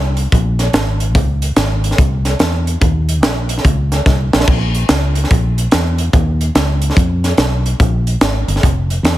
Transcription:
Already playing: fingered electric bass C2
0.17 closed hi-hat
0.32 fingered electric bass A#1, kick, closed hi-hat
0.59 snare, closed hi-hat
0.73 fingered electric bass G#1, snare, closed hi-hat
1.00 closed hi-hat
1.15 fingered electric bass C#2, kick, closed hi-hat
1.42 closed hi-hat
1.56 fingered electric bass G#1, snare, closed hi-hat
1.84 closed hi-hat
1.91 snare
1.98 fingered electric bass C2, kick, closed hi-hat
2.25 snare, closed hi-hat
2.39 fingered electric bass E2, snare, closed hi-hat
2.67 closed hi-hat
2.81 fingered electric bass D#2, kick, closed hi-hat
3.09 closed hi-hat
3.23 fingered electric bass A#1, snare, closed hi-hat
3.49 closed hi-hat
3.58 snare
3.64 fingered electric bass C#2, kick, closed hi-hat
3.92 snare, closed hi-hat
4.06 fingered electric bass C2, kick, snare
4.33 fingered electric bass A#1, snare
4.40 snare
4.47 fingered electric bass A#1, kick, crash
4.74 closed hi-hat
4.89 fingered electric bass C#2, snare, closed hi-hat
5.15 closed hi-hat
5.24 snare
5.31 fingered electric bass A#1, kick, closed hi-hat
5.58 closed hi-hat
5.72 fingered electric bass E2, snare, closed hi-hat
5.98 closed hi-hat
6.13 fingered electric bass D#2, kick, closed hi-hat
6.41 closed hi-hat
6.55 fingered electric bass C#2, snare, closed hi-hat
6.82 closed hi-hat
6.90 snare
6.96 fingered electric bass F2, kick, closed hi-hat
7.24 snare, closed hi-hat
7.37 fingered electric bass B1, snare, closed hi-hat
7.66 closed hi-hat
7.80 fingered electric bass A#1, kick, closed hi-hat
8.07 closed hi-hat
8.21 fingered electric bass G#1, snare, closed hi-hat
8.48 fingered electric bass G1, closed hi-hat
8.56 snare
8.63 fingered electric bass F1, kick, closed hi-hat
8.90 closed hi-hat
9.03 fingered electric bass E2, snare, closed hi-hat

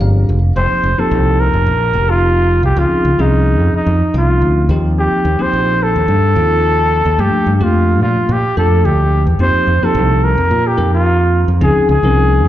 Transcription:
Already playing: tine electric piano F3 G#3 C4 D4 G4
0.00 fingered electric bass G1, tine electric piano F5
0.29 fingered electric bass F1
0.56 fingered electric bass F1, tine electric piano F3 A#3 C4 D#4 G4, muted trumpet C5
0.71 muted fingered electric bass stroke
0.83 fingered electric bass F1
0.98 tine electric piano F3 A#3 C4 D#4 G4, muted trumpet A4, muted fingered electric bass stroke
1.11 fingered electric bass C2
1.40 muted trumpet A#4
1.53 fingered electric bass F1
1.66 fingered electric bass A#1
1.93 fingered electric bass F1, tine electric piano F3 A#3 C4 D#4 G4
2.10 muted trumpet F4
2.63 fingered electric bass C2, muted trumpet G4
2.77 fingered electric bass C#2, tine electric piano F3 C4 C#4 D#4 G#4, muted trumpet F4
2.91 muted fingered electric bass stroke
3.04 fingered electric bass C#2
3.19 fingered electric bass C2, tine electric piano F3 C4 C#4 D#4 G#4, muted trumpet D#4
3.59 fingered electric bass F2
3.74 muted trumpet D#4, muted fingered electric bass stroke
3.86 fingered electric bass F2
4.14 fingered electric bass C2, tine electric piano F3 C4 C#4 D#4 F4, muted trumpet F4
4.42 fingered electric bass D2
4.69 fingered electric bass D#2, tine electric piano F3 A#3 C4 D#4 G4
4.99 muted trumpet G4
5.12 muted fingered electric bass stroke
5.25 fingered electric bass D#2
5.39 tine electric piano F3 A#3 C4 D#4 G4, muted trumpet C5, muted fingered electric bass stroke
5.53 fingered electric bass A#1
5.83 muted trumpet A4
5.96 fingered electric bass D#2
6.08 fingered electric bass G2
6.35 fingered electric bass D#2, tine electric piano F3 A#3 C4 D#4 F4
7.05 fingered electric bass D#2
7.18 fingered electric bass G2, tine electric piano F3 A3 A#3 D4 G4, muted trumpet G4
7.33 muted fingered electric bass stroke
7.46 fingered electric bass G2
7.55 muted trumpet G4
7.60 fingered electric bass F2, tine electric piano F3 A3 A#3 D4 G4, muted trumpet F4
8.01 fingered electric bass A#2, muted trumpet F4
8.17 muted fingered electric bass stroke
8.29 fingered electric bass A#2, muted trumpet G4
8.57 fingered electric bass F2, tine electric piano F3 A3 A#3 D4 A4, muted trumpet A4
8.85 fingered electric bass D2, muted trumpet G4
9.27 fingered electric bass E2
9.39 fingered electric bass F2, tine electric piano F3 A#3 C4 D#4 G4, muted trumpet C5
9.54 muted fingered electric bass stroke
9.67 fingered electric bass F2
9.82 tine electric piano F3 A#3 C4 D#4 G4, muted trumpet A4, muted fingered electric bass stroke
9.95 fingered electric bass C2
10.24 muted trumpet A#4
10.37 fingered electric bass F2
10.51 fingered electric bass A#2
10.67 muted trumpet G4
10.77 fingered electric bass F2, tine electric piano F3 A#3 C4 D#4 A#4
10.94 muted trumpet F4
11.48 fingered electric bass F2
11.61 fingered electric bass C#2, tine electric piano F3 C4 C#4 D#4 G#4, muted trumpet G#4
11.77 muted fingered electric bass stroke
11.89 fingered electric bass C#2, muted trumpet G#4
12.03 fingered electric bass C2, tine electric piano F3 C4 C#4 D#4 A#4
12.45 fingered electric bass F2

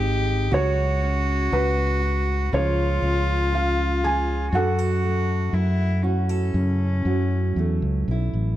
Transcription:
Already playing: fingered electric bass G#1, steel-string acoustic guitar G#2 D#3 G#3 C4, cello G4, felt piano D#5
0.02 steel-string acoustic guitar D#4
0.51 fingered electric bass C#2, steel-string acoustic guitar C#3 F#4, cello F#4, felt piano F#4 C#5
1.02 steel-string acoustic guitar C#4
1.52 fingered electric bass C#2, steel-string acoustic guitar F#4, felt piano B4
2.02 steel-string acoustic guitar F#4
2.52 fingered electric bass C#2, steel-string acoustic guitar C#3 F3 C#4 F4 G#4, cello F4, felt piano C#5
2.56 felt piano F4
3.02 fingered electric bass C#2, steel-string acoustic guitar C#4
3.52 steel-string acoustic guitar F4, felt piano F5
4.04 steel-string acoustic guitar G#4, felt piano G#5
4.52 fingered electric bass F#2, steel-string acoustic guitar F#2 F#4, cello F#4, felt piano F#5
4.56 felt piano A4
4.79 steel-string acoustic guitar A4
5.04 steel-string acoustic guitar A3
5.53 fingered electric bass F#2, cello E4, steel-string acoustic guitar E4
6.03 cello C#4, steel-string acoustic guitar F#4
6.29 steel-string acoustic guitar A4
6.54 fingered electric bass F#2, steel-string acoustic guitar C#3
7.05 fingered electric bass F#2, steel-string acoustic guitar F#3
7.56 fingered electric bass E2, steel-string acoustic guitar A3
7.82 fingered electric bass C#2
8.08 fingered electric bass B1, steel-string acoustic guitar E4
8.33 fingered electric bass A1

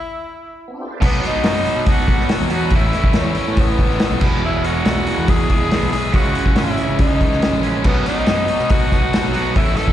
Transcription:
Already playing: tenor saxophone E4
0.68 tonewheel organ B3 C4
0.74 tonewheel organ D4 E4
0.80 tonewheel organ F4 G4
0.85 tonewheel organ A4 B4
0.91 tonewheel organ C5 D5
0.96 tonewheel organ E5 F5
1.01 picked electric bass B1, distorted electric guitar B2 F#3 B3 D#4 F#4, tonewheel organ B3 D#4 F#4, kick, crash
1.06 tenor saxophone B3
1.22 distorted electric guitar B3 D#4 F#4, snare, open hi-hat
1.27 tenor saxophone D#4
1.44 picked electric bass F#2, distorted electric guitar F#3 B3 D#4 F#4, snare, open hi-hat
1.65 distorted electric guitar B2 F#3 B3 D#4 F#4, open hi-hat
1.76 picked electric bass B2
1.86 distorted electric guitar F#3 B3 D#4 F#4, kick, open hi-hat
1.91 tenor saxophone F#4
2.07 picked electric bass B1, distorted electric guitar B2 F#3 B3 D#4 F#4, kick, open hi-hat
2.20 snare
2.29 distorted electric guitar F#3 B3 D#4 F#4, snare, open hi-hat
2.41 picked electric bass E2
2.50 overdriven electric guitar B2 F#3, distorted electric guitar B3 D#4 F#4, open hi-hat
2.54 tenor saxophone F#4
2.70 picked electric bass A1, distorted electric guitar A2 E3 A3 C#4 E4, tonewheel organ B3 C#4 A4, kick, open hi-hat
2.75 tenor saxophone E4
2.93 distorted electric guitar A3 C#4 E4, snare, open hi-hat
3.04 kick
3.13 picked electric bass E2, distorted electric guitar E3 A3 C#4 E4, snare, open hi-hat
3.18 tenor saxophone C#4
3.35 distorted electric guitar A2 E3 A3 C#4 E4, open hi-hat
3.48 picked electric bass A2
3.57 distorted electric guitar E3 A3 C#4 E4, tenor saxophone B3, kick, open hi-hat
3.79 picked electric bass A1, distorted electric guitar A2 E3 A3 C#4 E4, kick, open hi-hat
3.90 snare
4.00 distorted electric guitar E3 A3 C#4 E4, snare, open hi-hat
4.11 picked electric bass B1
4.21 picked electric bass E1, distorted electric guitar E2 B2 E3 G#3 B3 E4, tonewheel organ G#3 E4 F#4, kick, crash
4.42 distorted electric guitar E2 B2 E3 G#3 B3 E4, tenor saxophone E4
4.63 distorted electric guitar E3 G#3 B3 E4, tenor saxophone F#4, open hi-hat
4.84 picked electric bass B1, distorted electric guitar E3 G#3 B3 E4, snare, open hi-hat
5.06 distorted electric guitar E2 B2 E3 G#3 B3 E4, open hi-hat
5.18 picked electric bass E2
5.27 distorted electric guitar E3 G#3 B3 E4, tenor saxophone G#4, kick, open hi-hat
5.49 picked electric bass E1, distorted electric guitar E2 B2 E3 G#3 B3 E4, kick, open hi-hat
5.70 overdriven electric guitar E2 B2, distorted electric guitar E3 G#3 B3 E4, snare, open hi-hat
5.82 picked electric bass B1
5.91 distorted electric guitar E3 G#3 B3 E4, tenor saxophone G#4, open hi-hat
6.12 picked electric bass C#2, distorted electric guitar C#3 E3 G#3 C#4 E4, tonewheel organ C#4, tenor saxophone F#4, kick, open hi-hat
6.34 distorted electric guitar G#3 C#4 E4, open hi-hat
6.46 kick
6.55 picked electric bass G#1, distorted electric guitar E3 G#3 C#4 E4, tenor saxophone E4, snare, open hi-hat
6.77 distorted electric guitar C#3 E3 G#3 C#4 E4, open hi-hat
6.88 picked electric bass C#3
6.98 distorted electric guitar E3 G#3 C#4 E4, tenor saxophone D#4, kick, open hi-hat
7.20 picked electric bass C#2, distorted electric guitar C#3 E3 G#3 C#4 E4, kick, open hi-hat
7.32 snare
7.42 distorted electric guitar E3 G#3 C#4 E4, snare, open hi-hat
7.52 picked electric bass A#1
7.63 overdriven electric guitar C#3, distorted electric guitar G#3 C#4 E4, open hi-hat
7.84 picked electric bass B1, distorted electric guitar B2 F#3 B3 D#4 F#4, tonewheel organ B3 D#4 F#4, tenor saxophone B3, kick, tambourine, crash
7.96 tambourine
8.06 distorted electric guitar B3 D#4 F#4, tenor saxophone D#4, snare, open hi-hat, tambourine
8.26 picked electric bass F#2, distorted electric guitar F#3 B3 D#4 F#4, snare, open hi-hat, tambourine
8.39 tambourine
8.48 distorted electric guitar B2 F#3 B3 D#4 F#4, open hi-hat, tambourine
8.60 picked electric bass B2, tambourine
8.70 distorted electric guitar F#3 B3 D#4 F#4, tenor saxophone F#4, kick, open hi-hat
8.82 tambourine
8.91 picked electric bass B1, distorted electric guitar B2 F#3 B3 D#4 F#4, kick, open hi-hat, tambourine
9.04 tambourine
9.13 distorted electric guitar F#3 B3 D#4 F#4, snare, open hi-hat, tambourine
9.23 picked electric bass B1
9.33 overdriven electric guitar B2 F#3, distorted electric guitar B3 D#4 F#4, tenor saxophone F#4, open hi-hat, tambourine
9.45 tambourine
9.53 picked electric bass A1, distorted electric guitar A2 E3 A3 C#4 E4, tonewheel organ B3 C#4 A4, tenor saxophone E4, kick, open hi-hat, tambourine
9.66 tambourine
9.76 distorted electric guitar A3 C#4 E4, tenor saxophone A4, snare, open hi-hat, tambourine
9.88 kick

